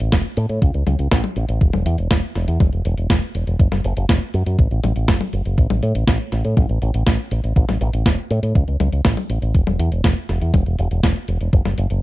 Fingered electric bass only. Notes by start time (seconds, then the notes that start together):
0.00 A1
0.12 E1
0.37 A2
0.49 A2
0.62 C#2
0.74 C#2
0.86 C#2
0.99 C#2
1.12 A1
1.36 A1
1.49 A1
1.61 E1
1.73 E1
1.86 E2
1.98 E1
2.11 E1
2.35 E1
2.48 E2
2.60 E1
2.73 E1
2.85 E1
2.97 E1
3.10 E1
3.35 E1
3.47 E1
3.60 F#1
3.72 F#1
3.84 F#1
3.97 F#1
4.09 E1
4.34 F#2
4.46 F#2
4.59 A1
4.71 A1
4.83 A1
4.96 A1
5.08 F#1
5.33 F#1
5.45 F#1
5.58 A1
5.70 A1
5.83 A2
5.95 A1
6.07 A1
6.32 A1
6.45 A2
6.57 A1
6.69 A1
6.82 A1
6.94 A1
7.07 A1
7.31 A1
7.44 A1
7.56 A1
7.68 A1
7.81 A1
7.93 A1
8.06 E1
8.31 A2
8.43 A2
8.55 C#2
8.68 C#2
8.80 C#2
8.92 C#2
9.05 A1
9.30 A1
9.42 A1
9.55 E1
9.67 E1
9.79 E2
9.92 E1
10.04 E1
10.29 E1
10.42 E2
10.54 E1
10.66 E1
10.79 E1
10.91 E1
11.03 E1
11.28 E1
11.41 E1
11.53 F#1
11.65 F#1
11.78 F#1
11.90 F#1